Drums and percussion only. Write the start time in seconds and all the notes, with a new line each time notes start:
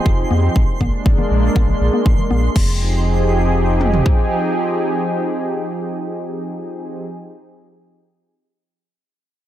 0.06 kick
0.31 open hi-hat, high conga
0.56 kick
0.81 kick, high conga
1.06 kick
1.18 high conga, low conga
1.31 open hi-hat
1.56 kick, high conga
1.69 low conga
1.81 open hi-hat
1.94 high conga
2.06 kick
2.18 low conga
2.31 high conga
2.56 kick, crash
3.81 mid tom
3.94 floor tom
4.06 kick